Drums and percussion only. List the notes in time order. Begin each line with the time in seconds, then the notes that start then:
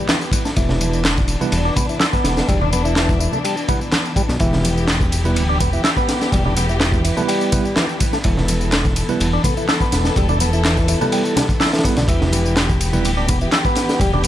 0.09 snare, clap, ride, tambourine, high conga
0.21 tambourine
0.32 kick, ride, tambourine
0.45 snare, tambourine
0.56 kick, ride, tambourine
0.69 snare, low conga
0.81 ride, tambourine, high conga
0.93 tambourine
1.05 snare, clap, ride, tambourine
1.17 kick, tambourine
1.28 ride, tambourine
1.41 tambourine, high conga, low conga
1.52 ride, tambourine
1.76 kick, ride, tambourine, low conga
1.89 tambourine
2.00 snare, clap, ride, tambourine, high conga
2.13 kick, tambourine
2.24 snare, ride, tambourine
2.37 snare, tambourine
2.48 kick, ride, tambourine
2.62 low conga
2.73 ride, tambourine, high conga
2.85 tambourine
2.96 snare, clap, ride, tambourine
3.09 kick, tambourine
3.20 tambourine
3.32 tambourine, high conga, low conga
3.45 ride, tambourine
3.57 tambourine
3.68 kick, ride, tambourine, low conga
3.81 tambourine
3.92 snare, clap, ride, tambourine, high conga
4.05 tambourine
4.16 kick, ride, tambourine
4.29 snare, tambourine
4.40 kick, ride, tambourine
4.53 snare, low conga
4.64 ride, tambourine, high conga
4.77 tambourine
4.88 snare, clap, ride, tambourine
5.01 kick, tambourine
5.12 ride, tambourine
5.25 tambourine, high conga, low conga
5.36 ride, tambourine
5.60 kick, ride, tambourine, low conga
5.73 tambourine
5.84 snare, clap, ride, tambourine, high conga
5.97 kick, tambourine
6.09 snare, ride, tambourine
6.21 snare, tambourine
6.32 kick, ride, tambourine
6.45 low conga
6.56 ride, tambourine, high conga
6.69 tambourine
6.80 snare, clap, ride, tambourine
6.92 kick, tambourine
7.05 ride, tambourine
7.17 tambourine, high conga, low conga
7.29 ride, tambourine
7.41 tambourine
7.52 kick, ride, tambourine, low conga
7.65 tambourine
7.76 snare, clap, ride, tambourine, high conga
7.89 tambourine
8.00 kick, ride, tambourine
8.13 snare, tambourine
8.24 kick, ride, tambourine
8.37 snare, low conga
8.48 ride, tambourine, high conga
8.61 tambourine
8.72 snare, clap, ride, tambourine
8.85 kick, tambourine
8.96 ride, tambourine
9.09 tambourine, high conga, low conga
9.20 ride, tambourine
9.44 kick, ride, tambourine, low conga
9.57 tambourine
9.69 snare, clap, ride, tambourine, high conga
9.80 kick, tambourine
9.92 snare, ride, tambourine
10.05 snare, tambourine
10.16 kick, ride, tambourine
10.29 tambourine, low conga
10.40 ride, tambourine, high conga
10.53 tambourine
10.65 snare, clap, ride, tambourine
10.77 kick, tambourine
10.88 ride, tambourine
11.01 tambourine, high conga, low conga
11.12 ride, tambourine
11.25 tambourine
11.36 snare, ride, tambourine, low conga
11.49 kick, tambourine
11.60 snare, clap, ride, tambourine, high conga
11.66 snare, ride
11.73 snare, ride, tambourine
11.78 snare, ride
11.85 kick, ride, tambourine
11.96 snare, ride, tambourine
12.08 kick, ride, tambourine
12.21 snare, low conga
12.32 ride, tambourine, high conga
12.46 tambourine
12.57 snare, clap, ride, tambourine
12.69 kick, tambourine
12.80 ride, tambourine
12.93 tambourine, high conga, low conga
13.05 ride, tambourine
13.28 kick, ride, tambourine, low conga
13.41 tambourine
13.52 snare, clap, ride, tambourine, high conga
13.65 kick, tambourine
13.75 snare, ride, tambourine
13.89 snare, tambourine
14.00 kick, ride, tambourine
14.14 low conga
14.23 ride